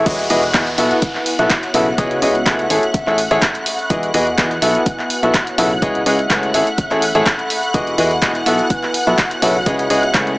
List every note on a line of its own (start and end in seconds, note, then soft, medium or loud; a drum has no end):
0.00 0.35 E5 medium
0.00 0.35 B5 medium
0.00 0.35 C#6 medium
0.06 0.28 E1 loud
0.06 0.24 E3 medium
0.06 0.24 E4 medium
0.06 1.26 E4 medium
0.06 0.24 F#4 medium
0.06 0.24 G#4 medium
0.06 0.24 B4 medium
0.06 0.24 D#5 medium
0.06 10.38 F#5 medium
0.06 10.38 F#6 medium
0.06 kick loud
0.06 closed hi-hat medium
0.06 downlifter medium
0.12 1.26 B4 medium
0.19 closed hi-hat soft
0.30 0.52 E1 loud
0.30 0.42 E3 medium
0.30 0.42 E4 medium
0.30 0.42 F#4 medium
0.30 0.42 G#4 medium
0.30 0.42 B4 medium
0.30 0.42 D#5 loud
0.30 1.26 F#5 medium
0.30 closed hi-hat medium
0.30 open hi-hat loud
0.39 1.26 G#5 medium
0.39 closed hi-hat soft
0.54 0.76 E2 loud
0.54 0.66 B3 medium
0.54 0.66 E4 medium
0.54 0.66 F#4 medium
0.54 0.66 G#4 medium
0.54 0.66 B4 medium
0.54 0.66 D#5 medium
0.54 kick loud
0.54 snare loud
0.54 clap loud
0.54 closed hi-hat medium
0.67 closed hi-hat soft
0.78 0.93 B1 loud
0.78 0.96 B3 medium
0.78 2.27 B3 medium
0.78 0.96 E4 medium
0.78 0.96 F#4 medium
0.78 0.96 A4 medium
0.78 0.96 B4 medium
0.78 0.96 E5 loud
0.78 snare soft
0.78 closed hi-hat medium
0.78 open hi-hat loud
0.91 closed hi-hat medium
1.02 2.27 F#4 medium
1.02 4.19 E5 medium
1.02 kick loud
1.02 closed hi-hat medium
1.15 clap soft
1.26 closed hi-hat medium
1.26 open hi-hat loud
1.33 2.27 C#5 medium
1.39 1.47 B1 loud
1.39 1.49 B3 medium
1.39 1.49 E4 medium
1.39 1.49 F#4 medium
1.39 1.49 A4 medium
1.39 1.49 B4 medium
1.39 1.49 E5 medium
1.39 closed hi-hat medium
1.50 kick loud
1.50 snare loud
1.50 clap loud
1.50 closed hi-hat medium
1.63 closed hi-hat soft
1.74 1.96 B1 medium
1.74 1.86 C#3 medium
1.74 1.86 E4 medium
1.74 1.86 F#4 medium
1.74 1.86 A4 medium
1.74 1.86 B4 medium
1.74 1.86 E5 loud
1.74 closed hi-hat medium
1.74 open hi-hat loud
1.98 2.20 C#2 loud
1.98 2.16 C#3 medium
1.98 3.18 C#4 medium
1.98 2.16 E4 medium
1.98 2.16 G#4 medium
1.98 2.16 B4 medium
1.98 2.16 C#5 medium
1.98 2.16 D#5 loud
1.98 kick loud
1.98 closed hi-hat medium
2.11 closed hi-hat soft
2.22 2.44 C#2 loud
2.22 2.34 C#3 medium
2.22 2.34 E4 medium
2.22 2.34 G#4 medium
2.22 2.34 B4 medium
2.22 2.34 C#5 medium
2.22 2.34 D#5 medium
2.22 closed hi-hat medium
2.22 open hi-hat loud
2.35 closed hi-hat soft
2.46 2.68 C#2 loud
2.46 2.64 A3 medium
2.46 2.64 E4 medium
2.46 2.64 G#4 medium
2.46 2.64 B4 medium
2.46 2.64 C#5 medium
2.46 2.64 F#5 medium
2.46 kick loud
2.46 snare loud
2.46 clap loud
2.46 closed hi-hat medium
2.59 closed hi-hat soft
2.70 2.79 A1 loud
2.70 2.82 A3 medium
2.70 2.82 E4 medium
2.70 2.82 G#4 medium
2.70 3.90 A4 medium
2.70 2.82 A4 medium
2.70 2.82 C#5 medium
2.70 2.82 E5 medium
2.70 closed hi-hat medium
2.70 open hi-hat loud
2.83 closed hi-hat medium
2.94 kick loud
2.94 closed hi-hat medium
3.07 3.28 A1 medium
3.07 3.17 A3 medium
3.07 3.17 E4 medium
3.07 3.17 G#4 medium
3.07 3.17 A4 medium
3.07 3.17 C#5 medium
3.07 3.17 E5 medium
3.07 clap soft
3.18 closed hi-hat medium
3.18 open hi-hat loud
3.24 4.19 B5 medium
3.24 4.19 C#6 medium
3.31 3.39 A1 loud
3.31 3.41 A3 loud
3.31 3.41 E4 loud
3.31 3.41 G#4 loud
3.31 3.41 A4 loud
3.31 3.41 C#5 medium
3.31 3.41 E5 loud
3.31 closed hi-hat medium
3.42 kick loud
3.42 snare loud
3.42 clap loud
3.42 closed hi-hat medium
3.55 closed hi-hat soft
3.66 closed hi-hat medium
3.66 open hi-hat loud
3.79 closed hi-hat soft
3.90 4.12 E1 loud
3.90 4.08 E3 medium
3.90 4.08 E4 medium
3.90 5.10 E4 medium
3.90 4.08 F#4 medium
3.90 4.08 G#4 medium
3.90 4.08 B4 medium
3.90 4.08 D#5 medium
3.90 kick loud
3.90 closed hi-hat medium
3.99 5.10 B4 medium
3.99 closed hi-hat soft
4.14 4.36 E2 loud
4.14 4.26 E3 medium
4.14 4.26 E4 medium
4.14 4.26 F#4 medium
4.14 4.26 G#4 medium
4.14 4.26 B4 medium
4.14 4.26 D#5 loud
4.14 closed hi-hat medium
4.14 open hi-hat loud
4.23 5.10 F#5 medium
4.23 5.10 G#5 medium
4.23 closed hi-hat soft
4.38 4.60 E2 loud
4.38 4.50 B3 medium
4.38 4.50 E4 medium
4.38 4.50 F#4 medium
4.38 4.50 G#4 medium
4.38 4.50 B4 medium
4.38 4.50 D#5 medium
4.38 kick loud
4.38 snare loud
4.38 clap loud
4.38 closed hi-hat medium
4.51 closed hi-hat soft
4.62 4.77 B1 loud
4.62 4.80 B3 medium
4.62 6.11 B3 medium
4.62 4.80 E4 medium
4.62 4.80 F#4 medium
4.62 4.80 A4 medium
4.62 4.80 B4 medium
4.62 4.80 E5 medium
4.62 snare soft
4.62 closed hi-hat medium
4.62 open hi-hat loud
4.74 6.11 F#4 medium
4.74 closed hi-hat medium
4.86 kick loud
4.86 closed hi-hat medium
4.94 8.03 E5 medium
4.99 clap soft
5.10 closed hi-hat medium
5.10 open hi-hat loud
5.17 6.11 C#5 medium
5.23 5.31 B1 loud
5.23 5.33 B3 medium
5.23 5.33 E4 medium
5.23 5.33 F#4 medium
5.23 5.33 A4 medium
5.23 5.33 B4 medium
5.23 5.33 E5 medium
5.23 closed hi-hat soft
5.34 kick loud
5.34 snare loud
5.34 clap loud
5.34 closed hi-hat medium
5.47 closed hi-hat soft
5.58 5.80 B1 medium
5.58 5.70 C#3 medium
5.58 5.70 E4 medium
5.58 5.70 F#4 medium
5.58 5.70 A4 medium
5.58 5.70 B4 medium
5.58 5.70 E5 loud
5.58 closed hi-hat medium
5.58 open hi-hat loud
5.82 6.04 C#2 loud
5.82 6.00 C#3 medium
5.82 7.02 C#4 medium
5.82 6.00 E4 medium
5.82 6.00 G#4 medium
5.82 6.00 B4 medium
5.82 6.00 C#5 medium
5.82 6.00 D#5 loud
5.82 kick loud
5.82 closed hi-hat medium
5.95 closed hi-hat soft
6.06 6.28 C#2 loud
6.06 6.18 C#3 medium
6.06 6.18 E4 medium
6.06 6.18 G#4 medium
6.06 6.18 B4 medium
6.06 6.18 C#5 medium
6.06 6.18 D#5 medium
6.06 closed hi-hat medium
6.06 open hi-hat loud
6.19 closed hi-hat soft
6.30 6.52 C#2 loud
6.30 6.48 A3 medium
6.30 6.48 E4 medium
6.30 6.48 G#4 medium
6.30 6.48 B4 medium
6.30 6.48 C#5 medium
6.30 6.48 F#5 medium
6.30 kick loud
6.30 snare loud
6.30 clap loud
6.30 closed hi-hat medium
6.43 closed hi-hat soft
6.54 6.63 A1 loud
6.54 6.66 A3 medium
6.54 6.66 E4 medium
6.54 6.66 G#4 medium
6.54 6.66 A4 medium
6.54 7.74 A4 medium
6.54 6.66 C#5 medium
6.54 6.66 E5 medium
6.54 closed hi-hat medium
6.54 open hi-hat loud
6.67 closed hi-hat medium
6.78 8.03 B5 medium
6.78 kick loud
6.78 closed hi-hat medium
6.91 7.12 A1 loud
6.91 7.01 A3 medium
6.91 7.01 E4 medium
6.91 7.01 G#4 medium
6.91 7.01 A4 medium
6.91 7.01 C#5 medium
6.91 7.01 E5 medium
6.91 clap soft
6.91 closed hi-hat soft
7.02 closed hi-hat medium
7.02 open hi-hat loud
7.09 8.03 C#6 medium
7.15 7.23 A1 loud
7.15 7.25 A3 loud
7.15 7.25 E4 medium
7.15 7.25 G#4 medium
7.15 7.25 A4 medium
7.15 7.25 C#5 medium
7.15 7.25 E5 loud
7.15 closed hi-hat soft
7.26 kick loud
7.26 snare loud
7.26 clap loud
7.26 closed hi-hat medium
7.39 closed hi-hat soft
7.50 closed hi-hat medium
7.50 open hi-hat loud
7.63 closed hi-hat soft
7.74 7.96 E1 loud
7.74 7.92 E3 medium
7.74 8.94 E4 medium
7.74 7.92 E4 medium
7.74 7.92 F#4 medium
7.74 7.92 G#4 medium
7.74 7.92 B4 medium
7.74 7.92 D#5 loud
7.74 kick loud
7.74 closed hi-hat medium
7.82 8.94 B4 medium
7.87 closed hi-hat soft
7.98 8.20 E2 loud
7.98 8.10 E3 medium
7.98 8.10 E4 medium
7.98 8.10 F#4 medium
7.98 8.10 G#4 medium
7.98 8.10 B4 medium
7.98 8.10 D#5 loud
7.98 closed hi-hat medium
7.98 open hi-hat loud
8.07 8.94 F#5 medium
8.07 8.94 G#5 medium
8.07 closed hi-hat soft
8.22 8.44 E1 loud
8.22 8.34 B3 medium
8.22 8.34 E4 medium
8.22 8.34 F#4 medium
8.22 8.34 G#4 medium
8.22 8.34 B4 medium
8.22 8.34 D#5 medium
8.22 kick loud
8.22 snare loud
8.22 clap loud
8.22 closed hi-hat medium
8.35 closed hi-hat soft
8.46 8.61 B1 loud
8.46 9.95 B3 medium
8.46 8.64 B3 medium
8.46 8.64 E4 medium
8.46 8.64 F#4 medium
8.46 8.64 A4 medium
8.46 8.64 B4 medium
8.46 8.64 E5 loud
8.46 snare soft
8.46 closed hi-hat medium
8.46 open hi-hat loud
8.59 closed hi-hat soft
8.70 kick loud
8.70 closed hi-hat medium
8.83 9.95 F#4 medium
8.83 clap soft
8.94 closed hi-hat medium
8.94 open hi-hat loud
9.01 9.95 C#5 medium
9.01 10.38 E5 medium
9.07 9.15 B1 loud
9.07 9.17 B3 medium
9.07 9.17 E4 medium
9.07 9.17 F#4 medium
9.07 9.17 A4 medium
9.07 9.17 B4 medium
9.07 9.17 E5 medium
9.07 closed hi-hat medium
9.18 kick loud
9.18 snare loud
9.18 clap loud
9.18 closed hi-hat medium
9.31 closed hi-hat soft
9.42 9.64 B1 medium
9.42 9.54 C#3 medium
9.42 9.54 E4 medium
9.42 9.54 F#4 medium
9.42 9.54 A4 medium
9.42 9.54 B4 medium
9.42 9.54 E5 loud
9.42 closed hi-hat medium
9.42 open hi-hat loud
9.66 9.88 C#2 loud
9.66 9.84 C#3 medium
9.66 10.38 C#4 medium
9.66 9.84 E4 medium
9.66 9.84 G#4 medium
9.66 9.84 B4 medium
9.66 9.84 C#5 medium
9.66 9.84 D#5 loud
9.66 kick loud
9.66 closed hi-hat medium
9.79 closed hi-hat soft
9.90 10.12 C#2 medium
9.90 10.02 C#3 medium
9.90 10.02 E4 medium
9.90 10.02 G#4 medium
9.90 10.02 B4 medium
9.90 10.02 C#5 medium
9.90 10.02 D#5 medium
9.90 closed hi-hat medium
9.90 open hi-hat loud
10.03 closed hi-hat soft
10.14 10.36 C#2 medium
10.14 10.32 A3 medium
10.14 10.32 E4 medium
10.14 10.32 G#4 medium
10.14 10.32 B4 medium
10.14 10.32 C#5 medium
10.14 10.32 F#5 medium
10.14 kick loud
10.14 snare loud
10.14 clap loud
10.14 closed hi-hat medium
10.27 closed hi-hat soft